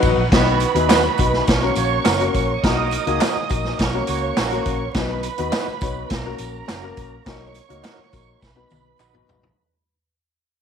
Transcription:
Already playing: upright piano F#3 B3 D#4 F#4 B4, violin section D#4 B4 F#5
0.02 fingered electric bass A1, kick, ride, tambourine
0.17 fingered electric bass A#1
0.31 fingered electric bass B1, horn section D#3 B3 F#4, upright piano B3 D#4 F#4 B4, violin section B4 B5, kick, snare, closed hi-hat
0.60 closed hi-hat, tambourine
0.74 fingered electric bass D#2, horn section G#3 E4 G#4, upright piano B3 D#4 F#4 B4, closed hi-hat
0.89 horn section D#3 B3 F#4, clean electric guitar D#4 F#4 B4, snare, clap, closed hi-hat, tambourine
1.18 fingered electric bass B1, upright piano B3 D#4 F#4 B4, kick, closed hi-hat, tambourine
1.33 snare
1.47 fingered electric bass B1, horn section F#3 C#4 A#4, violin section C#5 C#6, kick, snare, closed hi-hat, tambourine
1.62 upright piano A#3 C#4 F#4 A#4
1.75 fingered electric bass A#1, horn section A#3 F#4 C#5, closed hi-hat, tambourine
2.05 fingered electric bass F#1, horn section F#3 C#4 A#4, clean electric guitar C#4 F#4 A#4, snare, clap, closed hi-hat, tambourine
2.20 upright piano A#3 C#4 F#4 A#4, closed hi-hat
2.34 fingered electric bass A#1, kick, closed hi-hat, tambourine
2.63 fingered electric bass B1, horn section F#3 D#4 A#4, upright piano A#3 D#4 F#4 A#4, violin section D#5 D#6, kick, snare, closed hi-hat, tambourine
2.91 closed hi-hat, tambourine
3.06 fingered electric bass C#2, horn section D#3 A#3 G#4, upright piano A#3 D#4 F#4 A#4, closed hi-hat
3.21 clean electric guitar D#4 F#4 A#4, snare, clap, closed hi-hat, tambourine
3.36 muted fingered electric bass stroke
3.49 fingered electric bass A#1, upright piano A#3 D#4 F#4 A#4, kick, closed hi-hat, tambourine
3.65 snare
3.78 fingered electric bass B1, horn section F#3 C#4 A#4, violin section C#5 C#6, kick, snare, closed hi-hat, tambourine
3.93 upright piano A#3 C#4 F#4 A#4
4.07 fingered electric bass C#2, horn section A#3 F#4 C#5, closed hi-hat, tambourine
4.37 fingered electric bass A#1, horn section C#3 A#3 F#4, clean electric guitar C#4 F#4 A#4, snare, clap, closed hi-hat, tambourine
4.51 upright piano A#3 C#4 F#4 A#4, closed hi-hat
4.65 fingered electric bass A#1, kick, closed hi-hat, tambourine
4.94 fingered electric bass B1, upright piano B3 D#4 F#4 B4, violin section B4 B5, kick, snare, closed hi-hat, tambourine
5.23 closed hi-hat, tambourine
5.38 fingered electric bass D#2, upright piano B3 D#4 F#4 B4, closed hi-hat
5.52 clean electric guitar D#4 F#4 B4, snare, clap, closed hi-hat, tambourine
5.68 muted fingered electric bass stroke
5.81 fingered electric bass B1, upright piano B3 D#4 F#4 C#5, kick, closed hi-hat, tambourine
6.10 fingered electric bass B1, violin section A#4 A#5, kick, snare, closed hi-hat, tambourine
6.25 upright piano A#3 C#4 F#4 A#4
6.38 fingered electric bass A#1, closed hi-hat, tambourine
6.68 fingered electric bass F#1, clean electric guitar C#4 F#4 A#4, snare, clap, closed hi-hat, tambourine
6.83 upright piano A#3 C#4 F#4 A#4
6.97 fingered electric bass A#1, kick, closed hi-hat, tambourine
7.25 fingered electric bass B1, upright piano A#3 D#4 F#4 A#4, violin section C#5 C#6, kick, snare, closed hi-hat, tambourine
7.54 closed hi-hat, tambourine
7.69 fingered electric bass C#2, upright piano A#3 D#4 F#4 A#4, closed hi-hat
7.84 clean electric guitar D#4 F#4 A#4, snare, clap, closed hi-hat, tambourine
7.99 muted fingered electric bass stroke
8.11 fingered electric bass A#1, upright piano A#3 D#4 F#4 A#4, kick, closed hi-hat, tambourine
8.42 fingered electric bass B1, violin section B4 B5, kick, snare, tambourine
8.55 upright piano B3 D#4 F#4 B4
8.70 fingered electric bass B1, high tom, tambourine
9.00 fingered electric bass A#1, clean electric guitar D#4 F#4 B4, clap, tambourine
9.13 upright piano B3 D#4 F#4 B4, mid tom
9.29 fingered electric bass A#1, floor tom, tambourine
9.43 floor tom

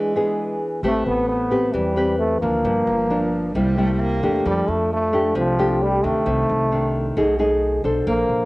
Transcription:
Already playing: nylon-string guitar E3 B3 D4 G#4, trombone G#3
0.16 nylon-string guitar B3 D4 G#4
0.83 upright bass A1, nylon-string guitar A3 C4 G4 B4, trombone A3
1.06 upright bass A1, trombone B3
1.29 trombone B3
1.51 nylon-string guitar C4 G4 B4
1.74 upright bass E2, nylon-string guitar E3, trombone G3
1.96 nylon-string guitar C4 G4 B4
2.19 trombone A3
2.41 upright bass D2, nylon-string guitar F3 A#3 D4, trombone A#3
2.64 upright bass G1, nylon-string guitar G2
2.87 upright bass G1, cello F3
3.10 nylon-string guitar F3 A#3 D4
3.55 upright bass C2, nylon-string guitar C3 G3 A#3 E4, cello G3
3.77 nylon-string guitar G3 A#3 E4, cello A3
3.93 cello A3
4.00 cello A#3
4.23 upright bass E2, nylon-string guitar A3 D4 G4
4.46 upright bass F2, nylon-string guitar F3, trombone G3
4.68 upright bass F2, trombone A3
4.93 trombone A3
5.13 nylon-string guitar A3 D4 G4
5.35 upright bass C2, nylon-string guitar C3, trombone F3
5.59 nylon-string guitar A3 D4 G4
5.82 trombone G3
6.03 upright bass D2, nylon-string guitar D#3 D4, trombone A3
6.26 upright bass C2, nylon-string guitar C3
6.49 upright bass C2
6.72 nylon-string guitar D#3 D4
7.17 upright bass B1, nylon-string guitar B2 A3 D#4 G#4
7.39 nylon-string guitar A3 D#4 G#4
7.84 upright bass B1, nylon-string guitar D4 A4 C5
8.07 upright bass A#1, nylon-string guitar A#3, trombone A#3
8.29 upright bass A#1

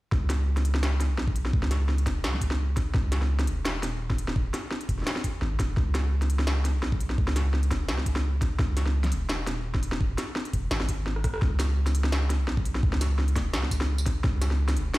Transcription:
0.12 808-style bass C#2, kick, snare
0.30 snare, closed hi-hat
0.57 snare, closed hi-hat
0.65 closed hi-hat
0.75 snare
0.83 snare
1.00 snare, closed hi-hat
1.10 808-style bass B1
1.18 snare
1.28 kick
1.36 closed hi-hat
1.45 snare
1.53 808-style bass C#2, kick
1.63 snare
1.71 snare, closed hi-hat
1.89 snare
1.98 closed hi-hat
2.06 808-style bass E1, kick, snare, closed hi-hat
2.24 808-style bass C#2, snare
2.34 snare
2.41 kick, closed hi-hat
2.51 snare
2.77 kick, snare, closed hi-hat
2.94 808-style bass C#2, kick, snare
3.12 snare, closed hi-hat
3.22 snare
3.39 snare, closed hi-hat
3.47 808-style bass E1, closed hi-hat
3.65 snare
3.83 808-style bass D#1, snare, closed hi-hat
4.10 kick, snare
4.18 closed hi-hat
4.28 snare
4.36 kick
4.54 snare, closed hi-hat
4.71 snare
4.81 closed hi-hat
4.89 808-style bass E1, kick, closed hi-hat
4.98 snare
5.03 snare
5.07 snare
5.11 snare
5.16 snare
5.24 kick, closed hi-hat
5.42 808-style bass G#1, snare
5.59 808-style bass E1, kick, snare, closed hi-hat
5.77 808-style bass C#2, kick, snare
5.95 snare, closed hi-hat
6.22 snare, closed hi-hat
6.30 closed hi-hat
6.39 snare
6.47 snare
6.65 snare, closed hi-hat
6.75 808-style bass B1
6.83 snare
6.92 kick
7.01 closed hi-hat
7.10 snare
7.18 808-style bass C#2, kick
7.28 snare
7.36 snare, closed hi-hat
7.54 snare
7.63 closed hi-hat
7.71 808-style bass E1, kick, snare, closed hi-hat
7.89 808-style bass C#2, snare
7.98 snare
8.06 kick, closed hi-hat
8.16 snare
8.42 kick, snare, closed hi-hat
8.59 808-style bass C#2, kick, snare
8.77 snare, closed hi-hat
8.86 snare
9.04 snare, closed hi-hat
9.12 808-style bass E1, closed hi-hat
9.29 snare
9.47 808-style bass D#1, snare, closed hi-hat
9.74 kick, snare
9.83 closed hi-hat
9.92 snare
10.01 kick
10.18 snare, closed hi-hat
10.36 snare
10.45 closed hi-hat
10.53 808-style bass E1, kick, closed hi-hat
10.71 808-style bass G#1, snare
10.80 snare
10.89 kick, closed hi-hat
11.06 snare
11.16 cross-stick
11.24 kick, cross-stick, closed hi-hat
11.34 cross-stick
11.36 cross-stick
11.38 cross-stick
11.40 808-style bass C#2, kick, cross-stick, snare
11.59 snare, closed hi-hat, tambourine
11.87 snare, closed hi-hat, tambourine
11.95 closed hi-hat
12.04 snare
12.12 snare
12.30 snare, closed hi-hat
12.40 808-style bass B1
12.48 snare
12.57 kick
12.65 closed hi-hat
12.75 snare
12.83 808-style bass C#2, kick
12.93 snare
13.01 snare, closed hi-hat, tambourine
13.19 snare
13.28 closed hi-hat
13.36 808-style bass E1, kick, snare, closed hi-hat
13.54 808-style bass C#2, snare
13.63 snare
13.71 kick, closed hi-hat, tambourine
13.81 snare
13.98 tambourine
14.06 kick, snare, closed hi-hat
14.24 808-style bass C#2, kick, snare
14.42 snare, closed hi-hat, tambourine
14.51 snare
14.68 snare, closed hi-hat, tambourine
14.77 808-style bass E1, closed hi-hat
14.94 snare

